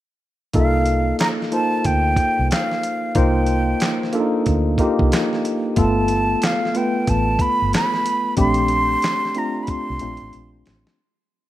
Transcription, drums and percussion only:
0.53 kick, closed hi-hat
0.86 closed hi-hat
1.19 snare, clap, closed hi-hat
1.42 snare
1.52 closed hi-hat
1.84 kick, closed hi-hat
2.16 kick, closed hi-hat
2.51 snare, clap, closed hi-hat
2.72 snare
2.83 closed hi-hat
3.15 kick, closed hi-hat
3.46 closed hi-hat
3.80 snare, clap, closed hi-hat
4.03 snare
4.13 closed hi-hat
4.46 kick, closed hi-hat
4.78 kick, closed hi-hat
4.99 kick
5.12 snare, clap, closed hi-hat
5.33 snare
5.45 closed hi-hat
5.76 kick, closed hi-hat
6.08 closed hi-hat
6.42 snare, clap, closed hi-hat
6.65 snare
6.75 closed hi-hat
7.07 kick, closed hi-hat
7.39 kick, closed hi-hat
7.73 snare, clap, closed hi-hat
7.94 snare
8.06 closed hi-hat
8.37 kick, closed hi-hat
8.54 closed hi-hat
8.68 closed hi-hat
9.02 snare, clap, closed hi-hat
9.25 snare
9.35 closed hi-hat
9.67 kick, closed hi-hat
9.99 closed hi-hat
10.17 closed hi-hat
10.33 closed hi-hat
10.66 snare, open hi-hat
10.87 snare

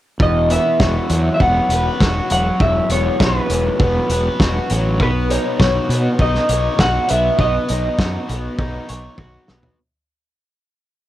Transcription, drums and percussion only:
0.20 kick
0.50 closed hi-hat
0.80 kick, snare
1.10 closed hi-hat
1.40 kick
1.70 closed hi-hat
2.00 kick, snare
2.30 closed hi-hat
2.60 kick
2.90 closed hi-hat
3.20 kick, snare
3.50 closed hi-hat
3.80 kick
4.10 closed hi-hat
4.40 kick, snare
4.70 closed hi-hat
5.00 kick
5.30 closed hi-hat
5.60 kick, snare
5.90 closed hi-hat
6.19 kick
6.35 snare
6.49 closed hi-hat
6.79 kick, snare
7.09 closed hi-hat
7.39 kick
7.69 closed hi-hat
7.99 kick, snare
8.29 closed hi-hat
8.59 kick
8.89 closed hi-hat
9.18 kick, high tom
9.48 snare
9.63 floor tom

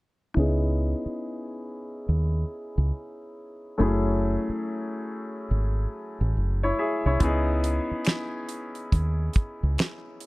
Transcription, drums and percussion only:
7.20 kick, closed hi-hat
7.64 closed hi-hat
8.05 finger snap, snare, closed hi-hat
8.49 closed hi-hat
8.75 closed hi-hat
8.92 kick, closed hi-hat
9.33 kick, closed hi-hat
9.78 finger snap, snare, closed hi-hat
10.20 closed hi-hat

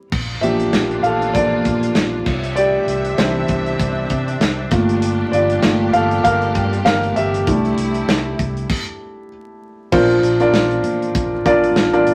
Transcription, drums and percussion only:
0.12 kick, crash
0.43 closed hi-hat
0.60 closed hi-hat
0.73 snare, closed hi-hat
0.91 closed hi-hat
1.04 closed hi-hat
1.22 closed hi-hat
1.35 kick, closed hi-hat
1.65 kick, closed hi-hat
1.83 closed hi-hat
1.95 snare, closed hi-hat
2.26 kick, snare, crash
2.44 closed hi-hat
2.56 closed hi-hat
2.88 closed hi-hat
3.05 closed hi-hat
3.18 snare, closed hi-hat
3.48 kick, closed hi-hat
3.66 closed hi-hat
3.80 kick, closed hi-hat
4.10 kick, closed hi-hat
4.28 closed hi-hat
4.41 snare, closed hi-hat
4.71 kick, snare, closed hi-hat
4.89 closed hi-hat
5.02 closed hi-hat
5.33 closed hi-hat
5.50 closed hi-hat
5.62 snare, closed hi-hat
5.93 closed hi-hat
6.11 closed hi-hat
6.25 kick, closed hi-hat
6.42 closed hi-hat
6.55 kick, closed hi-hat
6.73 closed hi-hat
6.86 snare, closed hi-hat
7.03 closed hi-hat
7.16 closed hi-hat
7.34 closed hi-hat
7.47 kick, closed hi-hat
7.65 closed hi-hat
7.78 closed hi-hat
7.94 closed hi-hat
8.09 snare, closed hi-hat
8.39 kick, closed hi-hat
8.57 closed hi-hat
8.70 kick, crash
9.92 kick, crash
10.10 closed hi-hat
10.23 closed hi-hat
10.40 closed hi-hat
10.54 snare
10.71 closed hi-hat
10.84 closed hi-hat
11.02 closed hi-hat
11.15 kick, closed hi-hat
11.46 kick, closed hi-hat
11.64 closed hi-hat
11.76 snare
11.93 closed hi-hat
12.07 closed hi-hat

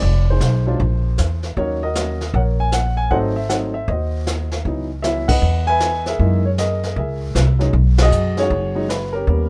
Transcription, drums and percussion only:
0.02 brush sweep
0.41 snare, hi-hat pedal
0.79 brush sweep, kick
1.18 snare, hi-hat pedal
1.43 snare
1.57 brush sweep, kick
1.95 snare, hi-hat pedal
2.21 snare
2.34 brush sweep, kick
2.72 snare, hi-hat pedal
3.11 brush sweep, kick
3.50 snare, hi-hat pedal
3.88 brush sweep, kick
4.27 snare, hi-hat pedal
4.51 snare
4.65 brush sweep, kick
5.04 snare, hi-hat pedal
5.29 kick, crash
5.42 brush sweep
5.80 snare, hi-hat pedal
6.06 snare
6.19 brush sweep, kick
6.58 snare, hi-hat pedal
6.83 snare
6.96 brush sweep, kick
7.35 snare, hi-hat pedal
7.60 snare
7.73 brush sweep, kick
7.98 snare, ride
8.12 hi-hat pedal
8.37 snare
8.50 brush sweep, kick
8.90 snare, hi-hat pedal
9.28 brush sweep, kick

